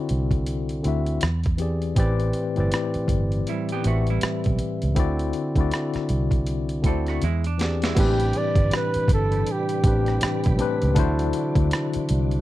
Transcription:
Already playing: D3 C4 E4 F#4 A4 D5
0.09 C2, closed hi-hat
0.31 kick, closed hi-hat
0.46 closed hi-hat
0.69 closed hi-hat
0.83 D2 D3 C4 E4 F#4, closed hi-hat
0.88 E5
1.06 closed hi-hat
1.21 E2, cross-stick, closed hi-hat
1.44 kick, closed hi-hat
1.57 E3 C4 G4 G#4, closed hi-hat
1.62 D5
1.82 closed hi-hat
1.95 A1 A2 E3 C4 G4 B4, kick, closed hi-hat
2.00 D5
2.20 closed hi-hat
2.33 closed hi-hat
2.55 G1 A2 E3 C4 G4, closed hi-hat
2.59 B4 D5
2.72 cross-stick, closed hi-hat
2.94 muted fingered electric bass stroke, closed hi-hat
3.08 G1, kick, closed hi-hat
3.32 closed hi-hat
3.47 G3 E4, closed hi-hat
3.69 G4, closed hi-hat
3.73 B3
3.82 A1 A2 E3 C4 G4, closed hi-hat
3.86 A3 F#4 B4 E5
4.07 G3 E4, closed hi-hat
4.21 muted fingered electric bass stroke, cross-stick, closed hi-hat
4.44 B1, kick, closed hi-hat
4.59 closed hi-hat
4.82 C#2, closed hi-hat
4.95 D2 D3 C4 E4 F#4, kick, closed hi-hat
5.00 D5
5.19 closed hi-hat
5.33 closed hi-hat
5.56 D2 D3 C4 E4 F#4, kick, closed hi-hat
5.61 D5
5.71 cross-stick, closed hi-hat
5.94 muted fingered electric bass stroke, cross-stick, closed hi-hat
6.09 C2, closed hi-hat
6.31 kick, closed hi-hat
6.47 closed hi-hat
6.69 closed hi-hat
6.82 D2 D3 C4 E4 F#4 A4, kick, closed hi-hat
6.87 C4 D5
7.07 A3 F#4, cross-stick, closed hi-hat
7.22 E2 G#3 E4, closed hi-hat
7.44 D4, closed hi-hat
7.58 E3 C4 G4 G#4, snare, closed hi-hat
7.63 D5
7.82 G#3 E4, snare, closed hi-hat
7.94 A1 A2 C3 E3 G3 B3 D4 F#4 B4, kick, closed hi-hat, crash
7.99 G4 B4
8.04 C4
8.20 closed hi-hat
8.33 closed hi-hat
8.38 D5
8.56 G1, kick, closed hi-hat
8.71 cross-stick, closed hi-hat
8.76 B4
8.94 muted fingered electric bass stroke, closed hi-hat
9.08 G1, kick, closed hi-hat
9.14 A4
9.32 closed hi-hat
9.47 closed hi-hat
9.52 G4
9.69 closed hi-hat
9.82 A1 A2 E3 C4 D4 G4, kick, closed hi-hat
9.87 B4
10.06 cross-stick, closed hi-hat
10.21 muted fingered electric bass stroke, cross-stick, closed hi-hat
10.44 B1, kick, closed hi-hat
10.57 A2 E3 C4 D4 G4, closed hi-hat
10.62 B4
10.82 C#2, closed hi-hat
10.94 D2 D3 E3 F#3 D4 E4 F#4, kick, closed hi-hat
10.99 C5
11.19 closed hi-hat
11.33 closed hi-hat
11.55 D2, kick, closed hi-hat
11.71 cross-stick, closed hi-hat
11.94 muted fingered electric bass stroke, closed hi-hat
12.09 C2, closed hi-hat
12.31 closed hi-hat

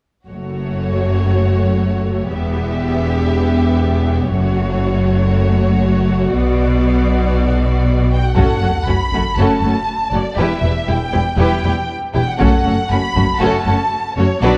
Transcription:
0.27 F#1 F#2 A3 F#4 C#5
2.31 E1 E2 B3 G4 E5
4.33 F#1 F#2 A3 F#4 C#5
6.34 B1 B2 B3 D5
8.12 G5
8.26 F#5
8.36 F#1 F#2 A3 C#4 F#4 A4 F#5, taiko, sub drop
8.61 F#1 F#2 A3 C#4 F#4 A4
8.87 F#1 F#2 A3 C#4 F#4 B5
9.12 F#1 F#2 A3 C#4 F#4 A4
9.37 F#1 F#2 A3 C#4 F#4 A4 A5
9.61 F#1 F#2 A3 C#4 F#4 A4
10.12 F#1 F#2 A3 C#4 F#4 A4 D5
10.37 E1 E2 G3 E4 G4 B4 E5
10.63 E1 E2 G3 E4 G4 B4
10.87 E1 E2 G3 E4 G4 G5
11.12 E1 E2 G3 E4 G4 B4
11.37 E1 E2 G3 E4 G4 B4 G5
11.63 E1 E2 G3 E4 G4 B4
12.13 E1 E2 G3 E4 G4 B4 G5
12.30 F#5
12.39 F#1 F#2 A3 C#4 F#4 A4 F#5, taiko
12.65 F#1 F#2 A3 C#4 F#4 A4
12.90 F#1 F#2 A3 C#4 F#4 B5
13.15 F#1 F#2 A3 C#4 F#4 A4, taiko
13.40 F#1 F#2 A3 C#4 F#4 A4 A5
13.66 F#1 F#2 A3 C#4 F#4 A4
14.17 F#1 F#2 A3 C#4 F#4 A4 C#5
14.42 B1 B2 F#3 D4 F#4 B4 D5

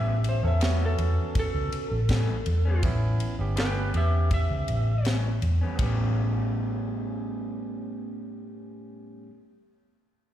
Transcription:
Already playing: A1 A2 G3 B3 C#4 G4 E5
0.24 ride
0.29 C5
0.43 E2 B3 C#4 A4
0.47 E5
0.60 A2 G3 B3 C#4 F#4, snare, ride
0.85 A4
0.98 E2, ride
1.35 muted fingered electric bass stroke, kick, ride
1.39 A4
1.54 C#2
1.72 muted fingered electric bass stroke, ride
1.91 A1
2.09 A2 G3 B3 C#4, kick, snare, ride
2.46 E2, ride
2.65 G3 B3 C#4
2.83 A1 B3 C#4 E4, kick, ride
3.20 ride
3.39 G1 B3 C#4 G4
3.56 A2 G3 B3 C#4 G4 B4, snare, ride
3.60 G5
3.94 E2 G4 E5, ride
4.31 E5, kick, ride
4.50 C#2
4.68 A1, ride
5.05 A2 G3 B3 C#4, snare, ride
5.42 E2, ride
5.61 G3 B3 C#4
5.75 A1 A2 B3 C#4, kick, ride bell
5.81 G3 B3 G4
5.85 C#4

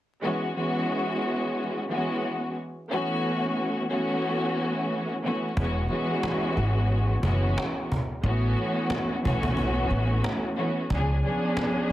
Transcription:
0.21 E3 G#3 B3 C#4 F#4
0.55 E3 G#3 B3 C#4 F#4
1.89 E3 G#3 B3 C#4 F#4
2.89 E3 A3 B3 C#4 F#4
3.89 E3 A3 B3 C#4 F#4
5.23 E3 A3 B3 C#4 F#4
5.55 E1 E3 G#3 B3 C#4 F#4, cajon bass
5.89 E3 G#3 B3 C#4 F#4, cajon slap
6.23 cajon slap
6.57 G#1
6.91 cajon slap
7.22 F#1 E3 G#3 B3 C#4 F#4, cajon bass
7.58 cajon slap
7.92 cajon bass
8.23 A1 E3 A3 B3 C#4 F#4, cajon slap
8.57 cajon slap
8.90 cajon slap
9.22 B1 E3 A3 B3 C#4 F#4, cajon bass
9.43 cajon bass
9.57 cajon bass
9.90 A1, cajon slap
10.24 cajon slap
10.56 E3 A3 B3 C#4 F#4, cajon slap
10.89 C#2 F3 B3 C#4 D4 G#4, cajon bass
11.23 F3 B3 C#4 D4 G#4, cajon slap
11.57 cajon slap

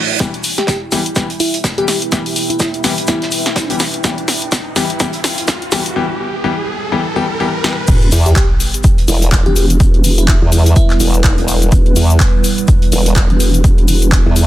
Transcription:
Already playing: A3 E4 F#4 D5 F#5, reverse cymbal
0.20 E3 G3 B3 E4 G4 E5, kick, snare, closed hi-hat, riser, shaker
0.34 closed hi-hat
0.43 open hi-hat, shaker
0.49 B4
0.58 G4, snare, closed hi-hat
0.67 kick, snare, closed hi-hat, shaker
0.75 G5
0.92 E3 G3 B3 G4, snare, open hi-hat, shaker
1.06 closed hi-hat
1.16 E3 G3 B3 G4, kick, snare, closed hi-hat, shaker
1.30 closed hi-hat
1.40 E4, open hi-hat, shaker
1.54 closed hi-hat
1.64 kick, snare, closed hi-hat, shaker
1.78 E3 G3 B3 G4, closed hi-hat
1.88 snare, open hi-hat, shaker
2.02 closed hi-hat
2.12 E3 G3 B3 G4, kick, snare, closed hi-hat, shaker
2.26 open hi-hat
2.36 open hi-hat, shaker
2.50 E4, closed hi-hat
2.60 E4, kick, snare, closed hi-hat, shaker
2.74 closed hi-hat
2.84 E3 G3 B3 G4, snare, open hi-hat, shaker
2.98 closed hi-hat
3.07 E3 G3 B3 E4 G4, kick, snare, closed hi-hat, shaker
3.22 snare, closed hi-hat
3.31 open hi-hat, shaker
3.46 snare, closed hi-hat
3.56 kick, snare, closed hi-hat, shaker
3.70 E3 G3 B3 G4, closed hi-hat
3.80 snare, open hi-hat, shaker
3.94 closed hi-hat
4.04 E3 G3 B3 G4, kick, snare, closed hi-hat, shaker
4.18 closed hi-hat
4.28 snare, open hi-hat, shaker
4.42 closed hi-hat
4.52 kick, snare, closed hi-hat, shaker
4.76 E3 G3 B3 G4, snare, open hi-hat, shaker
4.90 closed hi-hat
5.00 E3 G3 B3 G4, kick, snare, closed hi-hat, shaker
5.13 closed hi-hat
5.24 snare, open hi-hat, shaker
5.38 closed hi-hat
5.48 kick, snare, closed hi-hat, shaker
5.62 closed hi-hat
5.72 E3 G3 B3 G4, snare, open hi-hat, shaker
5.86 closed hi-hat
5.96 E3 G3 B3 G4
6.44 E3 G3 B3 G4
6.92 E3 G3 B3 G4
7.16 E3 G3 B3 G4
7.40 E3 G3 B3 G4
7.64 E3 G3 B3 G4, snare
7.88 E1 G3 B3 E4 B4, kick, closed hi-hat, crash, sub drop, shaker
8.02 closed hi-hat
8.11 E2, open hi-hat, shaker
8.26 G4, closed hi-hat, shaker
8.36 kick, snare, clap, closed hi-hat, shaker
8.60 open hi-hat, shaker
8.74 closed hi-hat, shaker
8.84 kick, closed hi-hat, shaker
8.98 closed hi-hat
9.08 E1 E4, open hi-hat, shaker
9.22 closed hi-hat, shaker
9.32 kick, snare, clap, closed hi-hat, shaker
9.46 E1 G4, closed hi-hat
9.56 G4, open hi-hat, shaker
9.70 closed hi-hat, shaker
9.80 E1, kick, closed hi-hat, shaker
9.94 closed hi-hat
10.04 E1, open hi-hat, shaker
10.18 E4, closed hi-hat, shaker
10.28 E4, kick, snare, clap, closed hi-hat, shaker
10.42 E2
10.52 open hi-hat, shaker
10.66 closed hi-hat, shaker
10.76 E4, kick, closed hi-hat, shaker
10.90 snare, clap, closed hi-hat
11.00 E1, open hi-hat, shaker
11.14 closed hi-hat, shaker
11.24 E1, kick, snare, clap, closed hi-hat, shaker
11.38 E1, closed hi-hat
11.48 open hi-hat, shaker
11.62 closed hi-hat, shaker
11.72 E1, kick, closed hi-hat, shaker
11.86 closed hi-hat
11.96 E2, open hi-hat, shaker
12.10 closed hi-hat, shaker
12.20 kick, snare, clap, closed hi-hat, shaker
12.44 open hi-hat, shaker
12.58 closed hi-hat, shaker
12.68 kick, closed hi-hat, shaker
12.82 closed hi-hat
12.92 E1, open hi-hat, shaker
13.06 closed hi-hat, shaker
13.16 kick, snare, clap, closed hi-hat, shaker
13.30 E1, closed hi-hat
13.40 open hi-hat, shaker
13.54 closed hi-hat, shaker
13.64 E1, kick, closed hi-hat, shaker
13.78 closed hi-hat
13.88 E1, open hi-hat, shaker
14.02 closed hi-hat, shaker
14.12 kick, snare, clap, closed hi-hat, shaker
14.26 E2
14.36 open hi-hat, shaker

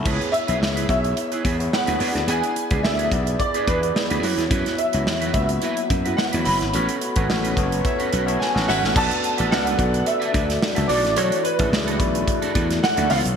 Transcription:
Already playing: A5 C#6
0.05 C#2 B3 E4 G#4 B4 C#5, kick, crash
0.21 closed hi-hat
0.32 E5, muted clean electric guitar stroke, closed hi-hat
0.47 B1 B3 E4 G#4 B4 C#5, closed hi-hat
0.61 C#2, muted clean electric guitar stroke, snare
0.76 E4 G#4 B4, closed hi-hat
0.88 B1 B3 E4 G#4 C#5 E5, muted clean electric guitar stroke, kick, closed hi-hat
1.04 muted clean electric guitar stroke, closed hi-hat
1.17 muted clean electric guitar stroke, closed hi-hat
1.32 E4 G#4 B4, closed hi-hat
1.44 E2 E4 G#4 B4, kick, closed hi-hat
1.59 B3 E4 G#4 C#5, muted clean electric guitar stroke, closed hi-hat
1.72 F#5, muted clean electric guitar stroke, snare
1.86 D2 B3 E4 G#4 B4 E5, closed hi-hat
1.99 E2 B3 D4 E4 G#4 B4 C#5, open hi-hat
2.07 D5
2.15 D2, muted clean electric guitar stroke, snare, closed hi-hat
2.27 E2 D4 G#4 B4 G#5, closed hi-hat
2.43 closed hi-hat
2.56 muted clean electric guitar stroke, closed hi-hat
2.71 C#2 B3 D4 E4 G#4 B4 D5, kick, closed hi-hat
2.83 D2 E5, muted clean electric guitar stroke, snare
2.98 D4 G#4 B4, closed hi-hat
3.11 B1 B3 E4 G4 D5, muted clean electric guitar stroke, kick, closed hi-hat
3.20 G#4
3.27 muted clean electric guitar stroke, closed hi-hat
3.39 D5, muted clean electric guitar stroke, kick, closed hi-hat
3.54 D4 G#4 B4, closed hi-hat
3.67 E2 D4 G#4 B4, kick, closed hi-hat
3.82 B3 E4 G#4 D5, muted clean electric guitar stroke, closed hi-hat
3.95 muted clean electric guitar stroke, snare
4.10 D2 B3 D4 E4 G#4 B4, closed hi-hat
4.23 F#2 A3 E4 F#4 B4 C#5, open hi-hat
4.29 B3
4.37 E2, muted clean electric guitar stroke, snare, closed hi-hat
4.51 F#2 F#3 E4 F#4 B4, kick, closed hi-hat
4.66 snare, closed hi-hat
4.78 E5, muted clean electric guitar stroke, closed hi-hat
4.93 C#2 B3 E4 F#4 B4 C#5, closed hi-hat
5.06 E2, muted clean electric guitar stroke, snare
5.21 E4 F#4 B4, closed hi-hat
5.33 C#2 A#3 E4 F#4 E5, muted clean electric guitar stroke, kick, closed hi-hat
5.41 B3
5.49 muted clean electric guitar stroke, closed hi-hat
5.62 E4 F#4 B4, closed hi-hat
5.77 muted clean electric guitar stroke, closed hi-hat
5.90 F#2, muted clean electric guitar stroke, kick, closed hi-hat
6.05 B3 E4 F#4 B4, closed hi-hat
6.17 F#5, muted clean electric guitar stroke, snare
6.32 E2 B3 E4 F#4 B4 C#5, closed hi-hat
6.45 F#1 E4 F#4 B4 B5, open hi-hat
6.61 G#1, muted clean electric guitar stroke, snare, closed hi-hat
6.73 A1 A3 B3 C#4 F#4 A4 B4 C#5, closed hi-hat
6.89 closed hi-hat
7.01 muted clean electric guitar stroke, closed hi-hat
7.16 G#1 B3 C#4 F#4 A4 B4 C#5, kick, closed hi-hat
7.29 A1, muted clean electric guitar stroke, snare
7.44 C#4 F#4 B4, closed hi-hat
7.56 F#1 B3 F#4 A4 B4, muted clean electric guitar stroke, kick, closed hi-hat
7.63 C#5
7.71 muted clean electric guitar stroke, closed hi-hat
7.85 E4 B4 C#5 E5, muted clean electric guitar stroke, kick, closed hi-hat
7.99 C#4 F#4 B4, closed hi-hat
8.12 B1 C#4 F#4 B4, closed hi-hat
8.26 B3 E4 F#4 A4 B4 C#5 E5, muted clean electric guitar stroke, closed hi-hat
8.40 G#5, muted clean electric guitar stroke, snare
8.54 A1 B3 C#4 F#4 A4 B4, snare
8.67 G#1 C#4 E4 F#4 B4 C#5 E5 F#5, snare
8.83 A1, muted clean electric guitar stroke, snare
8.95 B1 A3 B3 D4 F#4 A4 B4 D5 A5, kick, crash
9.11 closed hi-hat
9.24 muted clean electric guitar stroke, closed hi-hat
9.37 A1 B3 D4 F#4 A4 B4 D5, closed hi-hat
9.51 C#2 F#5, muted clean electric guitar stroke, snare
9.65 D4 A4 B4, closed hi-hat
9.78 B1 B3 F#4 A4 D5, kick, closed hi-hat
9.93 muted clean electric guitar stroke, closed hi-hat
10.06 E5, muted clean electric guitar stroke, closed hi-hat
10.20 D4 A4 B4, closed hi-hat
10.33 D2 D4 A4 B4, kick, closed hi-hat
10.48 muted clean electric guitar stroke, snare, closed hi-hat
10.61 muted clean electric guitar stroke, snare
10.75 C#2 B3 D4 F#4 A4 B4 E5, closed hi-hat
10.87 B1 E3 A3 D4 E4 F#4 A4 D5, open hi-hat
11.04 A1, muted clean electric guitar stroke, snare, closed hi-hat
11.16 B1 D4 F#4 A4 C#5, closed hi-hat
11.32 closed hi-hat
11.44 B4, muted clean electric guitar stroke, closed hi-hat
11.58 A1 A3 D4 E4 F#4 G#4 A4, kick, closed hi-hat
11.72 C#2, muted clean electric guitar stroke, snare
11.87 D4 F#4 A4, closed hi-hat
11.98 B1 A3 E4 F#4 D5, muted clean electric guitar stroke, kick, closed hi-hat
12.15 muted clean electric guitar stroke, closed hi-hat
12.28 muted clean electric guitar stroke, kick, closed hi-hat
12.42 D4 F#4 A4, closed hi-hat
12.54 E2 D4 F#4 A4, kick, closed hi-hat
12.70 muted clean electric guitar stroke, snare, closed hi-hat
12.82 F#5, muted clean electric guitar stroke, snare
12.96 D2 A3 D4 E4 F#4 A4 D5, closed hi-hat
13.09 C#2 C#3 F3 B3 E4 F4 A4 C#5 F5, open hi-hat
13.16 F4
13.24 B1, muted clean electric guitar stroke, closed hi-hat

